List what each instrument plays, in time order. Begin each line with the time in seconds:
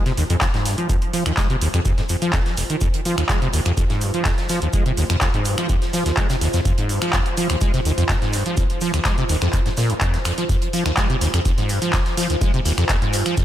Already playing: ambient pad F4 C5 G#5
0.06 acid bass C3, snare, closed hi-hat
0.17 acid bass D#2, open hi-hat, shaker
0.30 acid bass F2, closed hi-hat
0.41 acid bass F2, kick, snare, clap, closed hi-hat, shaker
0.54 acid bass G#2, snare, closed hi-hat
0.65 acid bass G2, snare, open hi-hat, shaker
0.78 acid bass F3, closed hi-hat
0.89 acid bass F2, kick, closed hi-hat, shaker
1.02 closed hi-hat
1.13 acid bass F3, open hi-hat, shaker
1.26 acid bass D#2, finger snap, closed hi-hat
1.37 acid bass G#3, kick, snare, clap, closed hi-hat, shaker
1.50 acid bass C3, closed hi-hat
1.61 acid bass D#2, open hi-hat, shaker
1.74 acid bass F2, finger snap, closed hi-hat
1.85 acid bass F2, kick, closed hi-hat, shaker
1.97 acid bass G#2, snare, closed hi-hat
2.09 acid bass F2, open hi-hat, shaker
2.22 acid bass F3, closed hi-hat
2.33 acid bass F2, kick, snare, clap, closed hi-hat, shaker
2.46 snare, closed hi-hat
2.57 acid bass F1, snare, open hi-hat, shaker
2.70 acid bass D#3, closed hi-hat
2.81 acid bass F2, kick, closed hi-hat, shaker
2.94 closed hi-hat
3.05 acid bass F3, open hi-hat, shaker
3.18 acid bass D#2, finger snap, closed hi-hat
3.29 acid bass G#3, kick, snare, clap, closed hi-hat, shaker
3.42 acid bass C3, closed hi-hat
3.51 acid bass D#2, ambient pad C6, open hi-hat, shaker
3.65 acid bass F2, finger snap, closed hi-hat
3.77 acid bass F2, kick, closed hi-hat, shaker
3.90 acid bass G#2, snare, closed hi-hat
4.01 acid bass G2, open hi-hat, shaker
4.14 acid bass F3, closed hi-hat
4.25 acid bass F2, kick, snare, clap, closed hi-hat, shaker
4.38 snare, closed hi-hat
4.49 acid bass F3, snare, open hi-hat, shaker
4.62 acid bass D#2, closed hi-hat
4.73 acid bass G#3, kick, closed hi-hat, shaker
4.86 acid bass C3, closed hi-hat
4.97 acid bass D#2, open hi-hat, shaker
5.10 acid bass F2, finger snap, closed hi-hat
5.21 acid bass F2, kick, snare, clap, closed hi-hat, shaker
5.34 acid bass G#2, closed hi-hat
5.45 acid bass G2, open hi-hat, shaker
5.58 acid bass F3, finger snap, closed hi-hat
5.69 acid bass F2, kick, closed hi-hat, shaker
5.82 snare, closed hi-hat
5.93 acid bass F3, snare, open hi-hat, shaker
6.06 acid bass D#2, snare, closed hi-hat
6.17 acid bass G#3, kick, snare, clap, closed hi-hat, shaker
6.30 acid bass C3, snare, closed hi-hat, shaker
6.41 acid bass D#2, snare, open hi-hat
6.53 acid bass F2, snare, closed hi-hat, shaker
6.65 acid bass F2, kick, closed hi-hat, shaker
6.78 acid bass G#2, closed hi-hat
6.89 acid bass G2, open hi-hat, shaker
7.02 acid bass F3, finger snap, closed hi-hat
7.13 acid bass F2, kick, snare, clap, closed hi-hat, shaker
7.26 closed hi-hat
7.37 acid bass F3, open hi-hat, shaker
7.49 acid bass D#2, finger snap, closed hi-hat
7.61 acid bass G#3, kick, closed hi-hat, shaker
7.74 acid bass C3, snare, closed hi-hat
7.85 acid bass D#2, open hi-hat, shaker
7.98 acid bass F2, closed hi-hat
8.09 acid bass F2, kick, snare, clap, closed hi-hat, shaker
8.22 acid bass G#2, snare, closed hi-hat
8.33 acid bass G2, snare, open hi-hat, shaker
8.46 acid bass F3, closed hi-hat
8.57 acid bass F2, kick, closed hi-hat, shaker
8.70 closed hi-hat
8.81 acid bass F3, open hi-hat, shaker
8.94 acid bass D#2, finger snap, closed hi-hat
9.05 acid bass G#3, kick, snare, clap, closed hi-hat, shaker
9.18 acid bass C3, closed hi-hat
9.29 acid bass D#2, open hi-hat, shaker
9.42 acid bass F2, finger snap, closed hi-hat
9.53 acid bass F2, kick, clap, closed hi-hat, shaker
9.66 acid bass G#2, snare, closed hi-hat
9.77 acid bass A#2, snare, open hi-hat, shaker
9.90 acid bass F2, closed hi-hat
10.01 acid bass F2, kick, clap, closed hi-hat, shaker
10.14 acid bass D#2, snare, closed hi-hat
10.25 acid bass F2, finger snap, open hi-hat, shaker
10.38 acid bass F3, closed hi-hat
10.49 acid bass F2, kick, closed hi-hat, shekere, shaker
10.62 closed hi-hat
10.73 acid bass F3, open hi-hat, shekere, shaker
10.86 acid bass D#2, finger snap, closed hi-hat, shekere
10.97 acid bass G#3, kick, snare, clap, closed hi-hat, shaker, shekere
11.10 acid bass C3, closed hi-hat
11.19 acid bass D#2, ambient pad G#5, open hi-hat, shekere, shaker
11.34 acid bass F2, finger snap, closed hi-hat, shekere
11.45 acid bass F2, kick, closed hi-hat, shaker, shekere
11.57 acid bass G#2, snare, closed hi-hat
11.69 acid bass G2, open hi-hat, shaker, shekere
11.82 acid bass F3, closed hi-hat, shekere
11.93 acid bass F2, kick, snare, clap, closed hi-hat, shaker
12.06 snare, closed hi-hat
12.17 acid bass F3, snare, open hi-hat, shaker, shekere
12.29 acid bass D#2, closed hi-hat, shekere
12.41 acid bass G#3, kick, closed hi-hat, shaker, shekere
12.54 acid bass C3, closed hi-hat
12.65 acid bass D#2, open hi-hat, shekere, shaker
12.78 acid bass F2, finger snap, closed hi-hat, shekere
12.89 acid bass F2, kick, snare, clap, closed hi-hat, shekere, shaker
13.02 acid bass G#2, closed hi-hat
13.13 acid bass G2, open hi-hat, shaker, shekere
13.25 acid bass F3, finger snap, closed hi-hat, shekere
13.37 acid bass F2, kick, closed hi-hat, shekere, shaker